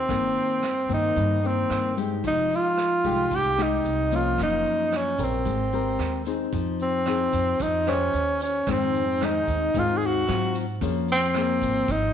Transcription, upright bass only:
0, 0, Header, 1, 2, 480
1, 0, Start_track
1, 0, Key_signature, -4, "major"
1, 0, Tempo, 536193
1, 81, Time_signature, 4, 2, 24, 8
1, 5844, Key_signature, -4, "minor"
1, 10861, End_track
2, 0, Start_track
2, 0, Title_t, "Upright bass"
2, 0, Program_c, 0, 32
2, 81, Note_on_c, 0, 31, 73
2, 304, Note_off_c, 0, 31, 0
2, 802, Note_on_c, 0, 43, 70
2, 1025, Note_off_c, 0, 43, 0
2, 1042, Note_on_c, 0, 43, 79
2, 1489, Note_off_c, 0, 43, 0
2, 1523, Note_on_c, 0, 43, 79
2, 1969, Note_off_c, 0, 43, 0
2, 2007, Note_on_c, 0, 29, 70
2, 2228, Note_off_c, 0, 29, 0
2, 2726, Note_on_c, 0, 36, 70
2, 2948, Note_off_c, 0, 36, 0
2, 2965, Note_on_c, 0, 36, 72
2, 3411, Note_off_c, 0, 36, 0
2, 3443, Note_on_c, 0, 36, 79
2, 3890, Note_off_c, 0, 36, 0
2, 3926, Note_on_c, 0, 30, 68
2, 4148, Note_off_c, 0, 30, 0
2, 4642, Note_on_c, 0, 34, 72
2, 4866, Note_off_c, 0, 34, 0
2, 4886, Note_on_c, 0, 32, 76
2, 5331, Note_off_c, 0, 32, 0
2, 5364, Note_on_c, 0, 39, 70
2, 5810, Note_off_c, 0, 39, 0
2, 5843, Note_on_c, 0, 41, 78
2, 6528, Note_off_c, 0, 41, 0
2, 6563, Note_on_c, 0, 41, 69
2, 6787, Note_off_c, 0, 41, 0
2, 6804, Note_on_c, 0, 41, 86
2, 7251, Note_off_c, 0, 41, 0
2, 7286, Note_on_c, 0, 39, 76
2, 7732, Note_off_c, 0, 39, 0
2, 7762, Note_on_c, 0, 41, 79
2, 8447, Note_off_c, 0, 41, 0
2, 8482, Note_on_c, 0, 39, 71
2, 8706, Note_off_c, 0, 39, 0
2, 8723, Note_on_c, 0, 39, 84
2, 9170, Note_off_c, 0, 39, 0
2, 9209, Note_on_c, 0, 44, 83
2, 9653, Note_off_c, 0, 44, 0
2, 9680, Note_on_c, 0, 41, 81
2, 10366, Note_off_c, 0, 41, 0
2, 10396, Note_on_c, 0, 32, 66
2, 10623, Note_off_c, 0, 32, 0
2, 10640, Note_on_c, 0, 32, 84
2, 10861, Note_off_c, 0, 32, 0
2, 10861, End_track
0, 0, End_of_file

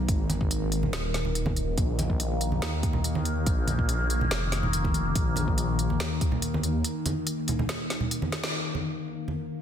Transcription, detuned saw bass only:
0, 0, Header, 1, 2, 480
1, 0, Start_track
1, 0, Tempo, 422535
1, 98, Time_signature, 4, 2, 24, 8
1, 10926, End_track
2, 0, Start_track
2, 0, Title_t, "Detuned saw bass"
2, 0, Program_c, 0, 39
2, 97, Note_on_c, 0, 32, 98
2, 1039, Note_off_c, 0, 32, 0
2, 1056, Note_on_c, 0, 27, 101
2, 1998, Note_off_c, 0, 27, 0
2, 2016, Note_on_c, 0, 34, 100
2, 2959, Note_off_c, 0, 34, 0
2, 2975, Note_on_c, 0, 39, 95
2, 3918, Note_off_c, 0, 39, 0
2, 3936, Note_on_c, 0, 34, 97
2, 4879, Note_off_c, 0, 34, 0
2, 4896, Note_on_c, 0, 29, 95
2, 5838, Note_off_c, 0, 29, 0
2, 5856, Note_on_c, 0, 34, 97
2, 6798, Note_off_c, 0, 34, 0
2, 6816, Note_on_c, 0, 39, 96
2, 7758, Note_off_c, 0, 39, 0
2, 10926, End_track
0, 0, End_of_file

